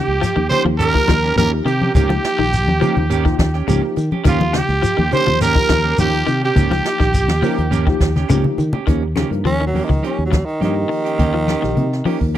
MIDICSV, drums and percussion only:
0, 0, Header, 1, 3, 480
1, 0, Start_track
1, 0, Tempo, 577478
1, 1623, Time_signature, 4, 2, 24, 8
1, 10289, End_track
2, 0, Start_track
2, 0, Title_t, "Shekere"
2, 193, Note_on_c, 9, 82, 83
2, 276, Note_off_c, 9, 82, 0
2, 430, Note_on_c, 9, 82, 29
2, 513, Note_off_c, 9, 82, 0
2, 662, Note_on_c, 9, 82, 86
2, 746, Note_off_c, 9, 82, 0
2, 908, Note_on_c, 9, 82, 26
2, 992, Note_off_c, 9, 82, 0
2, 1146, Note_on_c, 9, 82, 93
2, 1230, Note_off_c, 9, 82, 0
2, 1389, Note_on_c, 9, 82, 26
2, 1472, Note_off_c, 9, 82, 0
2, 1625, Note_on_c, 9, 82, 88
2, 1709, Note_off_c, 9, 82, 0
2, 1868, Note_on_c, 9, 82, 27
2, 1951, Note_off_c, 9, 82, 0
2, 2107, Note_on_c, 9, 82, 84
2, 2190, Note_off_c, 9, 82, 0
2, 2350, Note_on_c, 9, 82, 28
2, 2433, Note_off_c, 9, 82, 0
2, 2587, Note_on_c, 9, 82, 92
2, 2670, Note_off_c, 9, 82, 0
2, 2828, Note_on_c, 9, 82, 30
2, 2912, Note_off_c, 9, 82, 0
2, 3070, Note_on_c, 9, 82, 88
2, 3153, Note_off_c, 9, 82, 0
2, 3309, Note_on_c, 9, 82, 28
2, 3392, Note_off_c, 9, 82, 0
2, 3542, Note_on_c, 9, 82, 88
2, 3625, Note_off_c, 9, 82, 0
2, 3788, Note_on_c, 9, 82, 29
2, 3871, Note_off_c, 9, 82, 0
2, 4023, Note_on_c, 9, 82, 93
2, 4106, Note_off_c, 9, 82, 0
2, 4260, Note_on_c, 9, 82, 27
2, 4343, Note_off_c, 9, 82, 0
2, 4500, Note_on_c, 9, 82, 89
2, 4583, Note_off_c, 9, 82, 0
2, 4739, Note_on_c, 9, 82, 28
2, 4822, Note_off_c, 9, 82, 0
2, 4971, Note_on_c, 9, 82, 95
2, 5054, Note_off_c, 9, 82, 0
2, 5217, Note_on_c, 9, 82, 33
2, 5300, Note_off_c, 9, 82, 0
2, 5461, Note_on_c, 9, 82, 88
2, 5544, Note_off_c, 9, 82, 0
2, 5700, Note_on_c, 9, 82, 28
2, 5783, Note_off_c, 9, 82, 0
2, 5938, Note_on_c, 9, 82, 95
2, 6021, Note_off_c, 9, 82, 0
2, 6176, Note_on_c, 9, 82, 30
2, 6259, Note_off_c, 9, 82, 0
2, 6420, Note_on_c, 9, 82, 91
2, 6504, Note_off_c, 9, 82, 0
2, 6659, Note_on_c, 9, 82, 30
2, 6742, Note_off_c, 9, 82, 0
2, 6898, Note_on_c, 9, 82, 91
2, 6981, Note_off_c, 9, 82, 0
2, 7140, Note_on_c, 9, 82, 27
2, 7223, Note_off_c, 9, 82, 0
2, 10289, End_track
3, 0, Start_track
3, 0, Title_t, "Drums"
3, 187, Note_on_c, 9, 63, 40
3, 192, Note_on_c, 9, 42, 70
3, 193, Note_on_c, 9, 38, 26
3, 270, Note_off_c, 9, 63, 0
3, 275, Note_off_c, 9, 42, 0
3, 276, Note_off_c, 9, 38, 0
3, 306, Note_on_c, 9, 63, 77
3, 389, Note_off_c, 9, 63, 0
3, 421, Note_on_c, 9, 64, 84
3, 430, Note_on_c, 9, 42, 49
3, 504, Note_off_c, 9, 64, 0
3, 513, Note_off_c, 9, 42, 0
3, 545, Note_on_c, 9, 63, 65
3, 628, Note_off_c, 9, 63, 0
3, 661, Note_on_c, 9, 63, 32
3, 666, Note_on_c, 9, 42, 78
3, 744, Note_off_c, 9, 63, 0
3, 749, Note_off_c, 9, 42, 0
3, 789, Note_on_c, 9, 36, 70
3, 789, Note_on_c, 9, 42, 35
3, 872, Note_off_c, 9, 36, 0
3, 872, Note_off_c, 9, 42, 0
3, 898, Note_on_c, 9, 63, 97
3, 905, Note_on_c, 9, 36, 69
3, 906, Note_on_c, 9, 42, 58
3, 907, Note_on_c, 9, 38, 77
3, 981, Note_off_c, 9, 63, 0
3, 988, Note_off_c, 9, 36, 0
3, 989, Note_off_c, 9, 42, 0
3, 990, Note_off_c, 9, 38, 0
3, 1033, Note_on_c, 9, 42, 36
3, 1034, Note_on_c, 9, 38, 30
3, 1116, Note_off_c, 9, 42, 0
3, 1117, Note_off_c, 9, 38, 0
3, 1140, Note_on_c, 9, 63, 84
3, 1142, Note_on_c, 9, 42, 69
3, 1223, Note_off_c, 9, 63, 0
3, 1225, Note_off_c, 9, 42, 0
3, 1385, Note_on_c, 9, 42, 49
3, 1468, Note_off_c, 9, 42, 0
3, 1506, Note_on_c, 9, 42, 30
3, 1508, Note_on_c, 9, 63, 87
3, 1589, Note_off_c, 9, 42, 0
3, 1591, Note_off_c, 9, 63, 0
3, 1620, Note_on_c, 9, 42, 66
3, 1621, Note_on_c, 9, 36, 91
3, 1629, Note_on_c, 9, 63, 40
3, 1629, Note_on_c, 9, 64, 84
3, 1703, Note_off_c, 9, 42, 0
3, 1704, Note_off_c, 9, 36, 0
3, 1712, Note_off_c, 9, 63, 0
3, 1712, Note_off_c, 9, 64, 0
3, 1747, Note_on_c, 9, 63, 104
3, 1749, Note_on_c, 9, 38, 28
3, 1830, Note_off_c, 9, 63, 0
3, 1832, Note_off_c, 9, 38, 0
3, 1864, Note_on_c, 9, 42, 50
3, 1865, Note_on_c, 9, 38, 78
3, 1947, Note_off_c, 9, 42, 0
3, 1948, Note_off_c, 9, 38, 0
3, 2102, Note_on_c, 9, 42, 59
3, 2104, Note_on_c, 9, 63, 43
3, 2185, Note_off_c, 9, 42, 0
3, 2187, Note_off_c, 9, 63, 0
3, 2228, Note_on_c, 9, 63, 94
3, 2311, Note_off_c, 9, 63, 0
3, 2338, Note_on_c, 9, 42, 56
3, 2346, Note_on_c, 9, 64, 83
3, 2421, Note_off_c, 9, 42, 0
3, 2429, Note_off_c, 9, 64, 0
3, 2463, Note_on_c, 9, 42, 30
3, 2468, Note_on_c, 9, 63, 74
3, 2468, Note_on_c, 9, 64, 69
3, 2546, Note_off_c, 9, 42, 0
3, 2551, Note_off_c, 9, 63, 0
3, 2551, Note_off_c, 9, 64, 0
3, 2578, Note_on_c, 9, 42, 66
3, 2591, Note_on_c, 9, 63, 34
3, 2661, Note_off_c, 9, 42, 0
3, 2674, Note_off_c, 9, 63, 0
3, 2703, Note_on_c, 9, 42, 35
3, 2706, Note_on_c, 9, 36, 80
3, 2786, Note_off_c, 9, 42, 0
3, 2789, Note_off_c, 9, 36, 0
3, 2818, Note_on_c, 9, 42, 56
3, 2819, Note_on_c, 9, 38, 81
3, 2820, Note_on_c, 9, 36, 75
3, 2821, Note_on_c, 9, 63, 103
3, 2901, Note_off_c, 9, 42, 0
3, 2902, Note_off_c, 9, 38, 0
3, 2903, Note_off_c, 9, 36, 0
3, 2904, Note_off_c, 9, 63, 0
3, 2942, Note_on_c, 9, 42, 35
3, 2943, Note_on_c, 9, 38, 26
3, 3025, Note_off_c, 9, 42, 0
3, 3026, Note_off_c, 9, 38, 0
3, 3055, Note_on_c, 9, 42, 73
3, 3065, Note_on_c, 9, 63, 88
3, 3138, Note_off_c, 9, 42, 0
3, 3148, Note_off_c, 9, 63, 0
3, 3291, Note_on_c, 9, 42, 52
3, 3374, Note_off_c, 9, 42, 0
3, 3414, Note_on_c, 9, 42, 30
3, 3425, Note_on_c, 9, 63, 76
3, 3497, Note_off_c, 9, 42, 0
3, 3508, Note_off_c, 9, 63, 0
3, 3528, Note_on_c, 9, 42, 77
3, 3529, Note_on_c, 9, 38, 31
3, 3536, Note_on_c, 9, 36, 97
3, 3541, Note_on_c, 9, 63, 34
3, 3541, Note_on_c, 9, 64, 89
3, 3611, Note_off_c, 9, 42, 0
3, 3612, Note_off_c, 9, 38, 0
3, 3619, Note_off_c, 9, 36, 0
3, 3624, Note_off_c, 9, 63, 0
3, 3624, Note_off_c, 9, 64, 0
3, 3656, Note_on_c, 9, 42, 38
3, 3666, Note_on_c, 9, 63, 100
3, 3739, Note_off_c, 9, 42, 0
3, 3749, Note_off_c, 9, 63, 0
3, 3768, Note_on_c, 9, 38, 77
3, 3768, Note_on_c, 9, 42, 61
3, 3851, Note_off_c, 9, 42, 0
3, 3852, Note_off_c, 9, 38, 0
3, 3893, Note_on_c, 9, 38, 26
3, 3976, Note_off_c, 9, 38, 0
3, 4009, Note_on_c, 9, 42, 66
3, 4024, Note_on_c, 9, 63, 41
3, 4092, Note_off_c, 9, 42, 0
3, 4107, Note_off_c, 9, 63, 0
3, 4146, Note_on_c, 9, 63, 86
3, 4229, Note_off_c, 9, 63, 0
3, 4250, Note_on_c, 9, 42, 60
3, 4264, Note_on_c, 9, 64, 90
3, 4333, Note_off_c, 9, 42, 0
3, 4347, Note_off_c, 9, 64, 0
3, 4388, Note_on_c, 9, 63, 73
3, 4388, Note_on_c, 9, 64, 69
3, 4471, Note_off_c, 9, 63, 0
3, 4471, Note_off_c, 9, 64, 0
3, 4491, Note_on_c, 9, 42, 77
3, 4492, Note_on_c, 9, 38, 29
3, 4508, Note_on_c, 9, 63, 38
3, 4574, Note_off_c, 9, 42, 0
3, 4575, Note_off_c, 9, 38, 0
3, 4591, Note_off_c, 9, 63, 0
3, 4612, Note_on_c, 9, 42, 34
3, 4618, Note_on_c, 9, 36, 80
3, 4695, Note_off_c, 9, 42, 0
3, 4701, Note_off_c, 9, 36, 0
3, 4730, Note_on_c, 9, 42, 58
3, 4731, Note_on_c, 9, 38, 84
3, 4733, Note_on_c, 9, 36, 76
3, 4738, Note_on_c, 9, 63, 107
3, 4813, Note_off_c, 9, 42, 0
3, 4814, Note_off_c, 9, 38, 0
3, 4817, Note_off_c, 9, 36, 0
3, 4821, Note_off_c, 9, 63, 0
3, 4857, Note_on_c, 9, 42, 35
3, 4940, Note_off_c, 9, 42, 0
3, 4970, Note_on_c, 9, 42, 83
3, 4973, Note_on_c, 9, 63, 86
3, 5053, Note_off_c, 9, 42, 0
3, 5056, Note_off_c, 9, 63, 0
3, 5211, Note_on_c, 9, 42, 52
3, 5294, Note_off_c, 9, 42, 0
3, 5336, Note_on_c, 9, 42, 31
3, 5419, Note_off_c, 9, 42, 0
3, 5451, Note_on_c, 9, 63, 38
3, 5451, Note_on_c, 9, 64, 93
3, 5453, Note_on_c, 9, 42, 80
3, 5454, Note_on_c, 9, 36, 100
3, 5534, Note_off_c, 9, 63, 0
3, 5534, Note_off_c, 9, 64, 0
3, 5536, Note_off_c, 9, 42, 0
3, 5537, Note_off_c, 9, 36, 0
3, 5581, Note_on_c, 9, 63, 92
3, 5582, Note_on_c, 9, 38, 30
3, 5664, Note_off_c, 9, 63, 0
3, 5665, Note_off_c, 9, 38, 0
3, 5694, Note_on_c, 9, 42, 51
3, 5695, Note_on_c, 9, 38, 73
3, 5778, Note_off_c, 9, 38, 0
3, 5778, Note_off_c, 9, 42, 0
3, 5819, Note_on_c, 9, 38, 27
3, 5820, Note_on_c, 9, 36, 75
3, 5902, Note_off_c, 9, 38, 0
3, 5903, Note_off_c, 9, 36, 0
3, 5935, Note_on_c, 9, 42, 60
3, 5936, Note_on_c, 9, 36, 61
3, 5938, Note_on_c, 9, 63, 39
3, 6018, Note_off_c, 9, 42, 0
3, 6019, Note_off_c, 9, 36, 0
3, 6021, Note_off_c, 9, 63, 0
3, 6051, Note_on_c, 9, 63, 78
3, 6058, Note_on_c, 9, 38, 69
3, 6134, Note_off_c, 9, 63, 0
3, 6141, Note_off_c, 9, 38, 0
3, 6168, Note_on_c, 9, 64, 76
3, 6173, Note_on_c, 9, 46, 69
3, 6251, Note_off_c, 9, 64, 0
3, 6257, Note_off_c, 9, 46, 0
3, 6301, Note_on_c, 9, 42, 27
3, 6385, Note_off_c, 9, 42, 0
3, 6414, Note_on_c, 9, 63, 69
3, 6417, Note_on_c, 9, 42, 69
3, 6497, Note_off_c, 9, 63, 0
3, 6500, Note_off_c, 9, 42, 0
3, 6540, Note_on_c, 9, 36, 72
3, 6540, Note_on_c, 9, 42, 35
3, 6623, Note_off_c, 9, 36, 0
3, 6624, Note_off_c, 9, 42, 0
3, 6655, Note_on_c, 9, 36, 73
3, 6656, Note_on_c, 9, 42, 48
3, 6657, Note_on_c, 9, 38, 69
3, 6738, Note_off_c, 9, 36, 0
3, 6739, Note_off_c, 9, 42, 0
3, 6740, Note_off_c, 9, 38, 0
3, 6781, Note_on_c, 9, 42, 37
3, 6782, Note_on_c, 9, 38, 31
3, 6782, Note_on_c, 9, 64, 72
3, 6864, Note_off_c, 9, 42, 0
3, 6865, Note_off_c, 9, 38, 0
3, 6865, Note_off_c, 9, 64, 0
3, 6897, Note_on_c, 9, 42, 73
3, 6899, Note_on_c, 9, 64, 88
3, 6980, Note_off_c, 9, 42, 0
3, 6982, Note_off_c, 9, 64, 0
3, 7018, Note_on_c, 9, 64, 90
3, 7101, Note_off_c, 9, 64, 0
3, 7133, Note_on_c, 9, 64, 83
3, 7143, Note_on_c, 9, 42, 49
3, 7216, Note_off_c, 9, 64, 0
3, 7226, Note_off_c, 9, 42, 0
3, 7255, Note_on_c, 9, 64, 88
3, 7266, Note_on_c, 9, 42, 29
3, 7339, Note_off_c, 9, 64, 0
3, 7350, Note_off_c, 9, 42, 0
3, 7377, Note_on_c, 9, 63, 34
3, 7377, Note_on_c, 9, 64, 78
3, 7378, Note_on_c, 9, 36, 86
3, 7379, Note_on_c, 9, 42, 72
3, 7460, Note_off_c, 9, 63, 0
3, 7460, Note_off_c, 9, 64, 0
3, 7462, Note_off_c, 9, 36, 0
3, 7463, Note_off_c, 9, 42, 0
3, 7612, Note_on_c, 9, 63, 94
3, 7619, Note_on_c, 9, 42, 52
3, 7620, Note_on_c, 9, 38, 65
3, 7695, Note_off_c, 9, 63, 0
3, 7702, Note_off_c, 9, 42, 0
3, 7703, Note_off_c, 9, 38, 0
3, 7749, Note_on_c, 9, 42, 54
3, 7832, Note_off_c, 9, 42, 0
3, 7855, Note_on_c, 9, 63, 37
3, 7855, Note_on_c, 9, 64, 81
3, 7861, Note_on_c, 9, 42, 63
3, 7938, Note_off_c, 9, 63, 0
3, 7938, Note_off_c, 9, 64, 0
3, 7944, Note_off_c, 9, 42, 0
3, 8095, Note_on_c, 9, 63, 81
3, 8105, Note_on_c, 9, 46, 62
3, 8178, Note_off_c, 9, 63, 0
3, 8188, Note_off_c, 9, 46, 0
3, 8226, Note_on_c, 9, 36, 56
3, 8226, Note_on_c, 9, 64, 69
3, 8310, Note_off_c, 9, 36, 0
3, 8310, Note_off_c, 9, 64, 0
3, 8346, Note_on_c, 9, 42, 65
3, 8346, Note_on_c, 9, 63, 33
3, 8429, Note_off_c, 9, 42, 0
3, 8429, Note_off_c, 9, 63, 0
3, 8582, Note_on_c, 9, 36, 71
3, 8586, Note_on_c, 9, 63, 103
3, 8588, Note_on_c, 9, 38, 72
3, 8588, Note_on_c, 9, 42, 50
3, 8666, Note_off_c, 9, 36, 0
3, 8669, Note_off_c, 9, 63, 0
3, 8671, Note_off_c, 9, 42, 0
3, 8672, Note_off_c, 9, 38, 0
3, 8712, Note_on_c, 9, 42, 51
3, 8796, Note_off_c, 9, 42, 0
3, 8827, Note_on_c, 9, 63, 84
3, 8829, Note_on_c, 9, 38, 30
3, 8829, Note_on_c, 9, 42, 70
3, 8910, Note_off_c, 9, 63, 0
3, 8912, Note_off_c, 9, 42, 0
3, 8913, Note_off_c, 9, 38, 0
3, 9067, Note_on_c, 9, 46, 59
3, 9151, Note_off_c, 9, 46, 0
3, 9192, Note_on_c, 9, 42, 48
3, 9275, Note_off_c, 9, 42, 0
3, 9302, Note_on_c, 9, 42, 67
3, 9303, Note_on_c, 9, 36, 83
3, 9310, Note_on_c, 9, 63, 37
3, 9310, Note_on_c, 9, 64, 80
3, 9385, Note_off_c, 9, 42, 0
3, 9386, Note_off_c, 9, 36, 0
3, 9393, Note_off_c, 9, 63, 0
3, 9393, Note_off_c, 9, 64, 0
3, 9542, Note_on_c, 9, 63, 79
3, 9545, Note_on_c, 9, 38, 60
3, 9545, Note_on_c, 9, 42, 45
3, 9625, Note_off_c, 9, 63, 0
3, 9628, Note_off_c, 9, 42, 0
3, 9629, Note_off_c, 9, 38, 0
3, 9672, Note_on_c, 9, 38, 26
3, 9755, Note_off_c, 9, 38, 0
3, 9782, Note_on_c, 9, 42, 58
3, 9783, Note_on_c, 9, 63, 40
3, 9783, Note_on_c, 9, 64, 87
3, 9865, Note_off_c, 9, 42, 0
3, 9866, Note_off_c, 9, 63, 0
3, 9866, Note_off_c, 9, 64, 0
3, 9915, Note_on_c, 9, 38, 27
3, 9998, Note_off_c, 9, 38, 0
3, 10018, Note_on_c, 9, 63, 82
3, 10026, Note_on_c, 9, 46, 69
3, 10101, Note_off_c, 9, 63, 0
3, 10109, Note_off_c, 9, 46, 0
3, 10149, Note_on_c, 9, 36, 51
3, 10232, Note_off_c, 9, 36, 0
3, 10263, Note_on_c, 9, 42, 70
3, 10289, Note_off_c, 9, 42, 0
3, 10289, End_track
0, 0, End_of_file